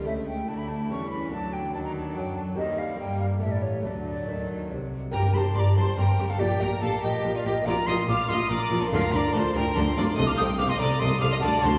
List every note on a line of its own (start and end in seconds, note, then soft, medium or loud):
0.04 0.47 C#2 medium
0.04 0.47 C#3 medium
0.04 0.45 C#3 soft
0.04 0.48 A3 soft
0.04 1.27 E4 soft
0.04 0.46 E4 soft
0.04 0.48 A4 soft
0.04 1.28 A4 soft
0.04 0.13 E5 medium
0.27 0.50 G5 medium
0.48 0.89 D2 medium
0.48 0.86 D3 soft
0.48 0.89 D3 medium
0.48 0.90 A3 medium
0.48 0.89 E4 medium
0.48 0.91 G4 medium
0.48 0.59 A5 medium
0.58 0.70 B5 medium
0.68 0.90 A5 medium
0.90 1.32 E2 medium
0.90 1.32 E3 medium
0.90 1.28 E3 soft
0.90 1.32 G3 medium
0.90 1.32 C#4 medium
0.90 1.72 A4 soft
0.90 1.10 C#6 medium
1.11 1.30 B5 medium
1.30 1.74 D2 medium
1.30 1.74 D3 medium
1.30 1.71 D3 soft
1.30 1.73 F#3 medium
1.30 2.53 D4 soft
1.30 2.58 D4 soft
1.30 2.54 A4 soft
1.30 1.55 A5 medium
1.53 1.74 G5 medium
1.73 2.15 D#2 medium
1.73 2.15 D#3 medium
1.73 2.12 D#3 soft
1.73 2.56 F#3 medium
1.73 3.39 A4 medium
1.73 1.79 A5 medium
1.85 1.95 A#5 medium
1.96 2.16 A5 medium
2.15 2.58 F#2 medium
2.15 2.58 F#3 medium
2.15 2.55 F#3 medium
2.15 2.21 A5 medium
2.20 2.36 G5 medium
2.36 2.42 A5 medium
2.55 2.99 D#2 medium
2.55 2.99 D#3 medium
2.55 2.96 D#3 medium
2.55 3.41 G3 medium
2.55 3.38 A#3 soft
2.55 2.99 C4 soft
2.55 3.39 G4 soft
2.55 2.80 D#5 medium
2.78 2.99 F5 medium
2.99 3.42 G2 medium
2.99 3.41 G3 medium
2.99 3.39 G3 soft
2.99 3.42 A#3 medium
2.99 3.20 G5 medium
3.20 3.26 F5 medium
3.39 3.84 A1 medium
3.39 3.84 A2 medium
3.39 3.81 A2 soft
3.39 3.84 G3 medium
3.39 3.81 A3 soft
3.39 3.84 B3 soft
3.39 3.84 G4 medium
3.39 3.83 A4 soft
3.39 3.53 E5 medium
3.52 3.64 D5 medium
3.62 3.84 C#5 medium
3.83 4.28 D2 medium
3.83 4.27 D3 medium
3.83 4.24 D3 soft
3.83 4.90 F#3 medium
3.83 4.25 A3 soft
3.83 4.93 A3 soft
3.83 5.09 A4 soft
3.83 4.93 A4 medium
3.83 4.69 D5 medium
4.27 4.70 D#2 medium
4.27 4.69 D#3 medium
4.27 4.67 D#3 soft
4.70 5.13 C2 medium
4.70 5.13 C3 medium
4.70 5.10 C3 soft
5.11 5.21 G1 medium
5.11 5.21 G2 medium
5.11 5.33 G2 medium
5.11 6.35 A#3 medium
5.11 5.21 G4 medium
5.11 6.36 G4 medium
5.11 5.33 A#4 medium
5.11 5.35 G5 loud
5.11 5.21 A#5 loud
5.33 5.42 G1 medium
5.33 5.42 G2 medium
5.33 5.54 G2 medium
5.33 5.43 G4 medium
5.33 5.43 C5 loud
5.33 5.39 B5 medium
5.33 5.55 C6 medium
5.38 5.57 A5 medium
5.55 5.64 G1 medium
5.55 5.63 G2 medium
5.55 5.75 G2 medium
5.55 5.64 G4 medium
5.55 5.76 D5 medium
5.55 5.61 C6 medium
5.55 5.63 D6 loud
5.60 5.76 A#5 medium
5.75 5.85 G1 medium
5.75 5.83 G2 medium
5.75 5.96 G2 medium
5.75 5.85 G4 medium
5.75 5.98 C5 loud
5.75 5.97 A5 medium
5.75 5.98 C6 loud
5.97 6.06 G1 medium
5.97 6.06 G2 medium
5.97 6.17 G2 medium
5.97 6.05 G4 medium
5.97 6.29 A#4 medium
5.97 6.31 G5 medium
5.97 6.07 A#5 medium
6.18 6.27 G1 medium
6.18 6.27 G2 medium
6.18 6.39 G2 medium
6.18 6.26 G4 medium
6.30 6.40 A4 medium
6.30 6.41 F5 medium
6.30 6.35 A5 medium
6.38 6.48 A#1 medium
6.38 6.48 A#2 medium
6.38 6.59 A#2 medium
6.38 7.61 D4 medium
6.38 7.62 G4 medium
6.38 6.47 G4 medium
6.38 6.62 G4 medium
6.38 6.62 D5 loud
6.38 6.61 G5 loud
6.61 6.69 A#1 medium
6.61 6.69 A#2 medium
6.61 6.81 A#2 medium
6.61 6.69 G4 medium
6.61 6.82 A#4 medium
6.61 6.81 G5 medium
6.61 6.83 A#5 loud
6.81 6.90 A#1 medium
6.81 6.90 A#2 medium
6.81 7.01 A#2 medium
6.81 6.90 G4 medium
6.81 7.02 A4 medium
6.81 7.02 F5 medium
6.81 7.03 A5 loud
7.02 7.11 A#1 medium
7.02 7.11 A#2 medium
7.02 7.22 A#2 medium
7.02 7.34 G4 medium
7.02 7.11 G4 medium
7.02 7.34 D#5 medium
7.02 7.11 G5 loud
7.24 7.32 A#1 medium
7.24 7.32 A#2 medium
7.24 7.43 A#2 medium
7.24 7.32 G4 medium
7.34 7.45 F4 medium
7.34 7.47 D5 medium
7.34 7.45 F5 loud
7.45 7.53 A#1 medium
7.45 7.53 A#2 medium
7.45 7.65 A#2 medium
7.45 7.53 G4 medium
7.45 7.54 G4 medium
7.45 7.68 D#5 medium
7.45 7.55 G5 loud
7.62 8.86 A#3 medium
7.62 8.86 D4 medium
7.62 8.87 F4 medium
7.66 7.75 A#1 medium
7.66 7.74 A#2 loud
7.66 7.85 A#2 medium
7.66 7.76 F4 medium
7.66 7.74 D5 medium
7.66 7.88 A#5 loud
7.66 7.76 D6 loud
7.87 7.95 A#1 medium
7.87 7.95 A#2 medium
7.87 8.06 A#2 medium
7.87 7.96 F4 medium
7.87 7.95 D#5 loud
7.87 8.08 C6 loud
7.87 7.97 D#6 loud
8.07 8.16 A#1 medium
8.07 8.15 A#2 medium
8.07 8.27 A#2 medium
8.07 8.17 F4 medium
8.07 8.29 F5 loud
8.07 8.30 D6 loud
8.07 8.29 F6 loud
8.29 8.37 A#1 loud
8.29 8.37 A#2 medium
8.29 8.48 A#2 medium
8.29 8.38 F4 medium
8.29 8.50 D#5 loud
8.29 8.51 C6 loud
8.29 8.51 D#6 loud
8.49 8.58 A#1 loud
8.49 8.57 A#2 medium
8.49 8.68 A#2 medium
8.49 8.60 F4 medium
8.49 8.81 D5 loud
8.49 8.82 A#5 loud
8.49 8.82 D6 loud
8.71 8.80 A#1 loud
8.71 8.79 A#2 medium
8.71 8.90 A#2 medium
8.71 8.80 F4 medium
8.81 8.92 C5 medium
8.81 8.90 A5 medium
8.81 8.93 C6 medium
8.87 10.11 A#3 medium
8.87 10.12 D4 medium
8.87 10.13 F4 medium
8.87 9.13 F5 loud
8.91 9.01 D2 loud
8.91 9.10 D3 medium
8.91 9.00 D3 loud
8.91 9.02 F4 medium
8.91 9.13 A#4 loud
8.91 9.13 A#5 loud
9.12 9.21 D2 medium
9.12 9.31 D3 medium
9.12 9.21 D3 medium
9.12 9.22 F4 medium
9.12 9.34 D5 loud
9.12 9.17 C6 loud
9.12 9.34 D6 loud
9.16 9.34 A#5 loud
9.33 9.42 D2 loud
9.33 9.53 D3 medium
9.33 9.42 D3 medium
9.33 9.43 F4 medium
9.33 9.55 C5 loud
9.33 9.54 A5 loud
9.33 9.55 C6 loud
9.54 9.63 D2 loud
9.54 9.63 D3 medium
9.54 9.74 D3 medium
9.54 9.63 F4 medium
9.54 9.76 A#4 loud
9.54 9.74 G5 medium
9.54 9.58 A5 medium
9.54 9.76 A#5 loud
9.74 9.85 D2 loud
9.74 9.83 D3 loud
9.74 9.95 D3 medium
9.74 9.84 F4 medium
9.74 9.97 C5 loud
9.74 9.80 A5 loud
9.74 9.96 C6 loud
9.95 10.05 D2 medium
9.95 10.05 D3 medium
9.95 10.16 D3 medium
9.95 10.06 F4 medium
9.95 10.06 D5 loud
9.95 10.16 A#5 medium
9.95 10.18 D6 loud
10.15 10.26 C2 loud
10.15 10.26 C3 loud
10.15 11.37 A3 medium
10.15 11.39 D#4 medium
10.15 11.39 A4 medium
10.15 10.26 A4 medium
10.15 10.28 D#5 loud
10.15 10.22 C6 loud
10.15 10.27 D#6 loud
10.19 10.37 C3 medium
10.26 10.39 F5 loud
10.26 10.31 D6 loud
10.26 10.32 F6 loud
10.36 10.47 C2 loud
10.36 10.47 C3 medium
10.36 10.58 C3 medium
10.36 10.47 A4 medium
10.36 10.59 G5 loud
10.36 10.43 D#6 loud
10.36 10.44 G6 loud
10.58 10.68 C2 loud
10.58 10.67 C3 medium
10.58 10.78 C3 medium
10.58 10.67 A4 medium
10.58 10.69 F5 loud
10.58 10.71 D6 loud
10.58 10.62 F6 loud
10.69 10.80 D#5 loud
10.69 10.81 C6 loud
10.69 10.74 D#6 loud
10.79 10.88 C2 loud
10.79 10.99 C3 medium
10.79 10.88 C3 medium
10.79 10.89 A4 medium
10.79 11.01 D5 loud
10.79 11.01 A#5 loud
10.79 11.00 D6 loud
11.00 11.09 C2 loud
11.00 11.20 C3 medium
11.00 11.09 C3 loud
11.00 11.09 A4 medium
11.00 11.08 D#5 loud
11.00 11.19 C6 loud
11.00 11.22 D#6 loud
11.20 11.31 C2 medium
11.20 11.40 C3 medium
11.20 11.30 C3 medium
11.20 11.30 A4 medium
11.20 11.26 F5 loud
11.20 11.30 D6 loud
11.20 11.32 F6 loud
11.30 11.36 D#5 loud
11.30 11.36 C6 loud
11.30 11.43 D#6 medium
11.38 11.78 A3 medium
11.38 11.78 F#4 medium
11.38 11.50 F#4 medium
11.38 11.78 A4 medium
11.38 11.60 A5 loud
11.38 11.50 D6 loud
11.42 11.51 D2 medium
11.42 11.62 D3 medium
11.42 11.51 D3 medium
11.42 11.64 D5 loud
11.61 11.72 D2 loud
11.61 11.71 D3 medium
11.61 11.78 D3 medium
11.61 11.72 F#4 medium
11.61 11.78 C5 loud
11.61 11.78 A5 loud
11.61 11.78 C6 loud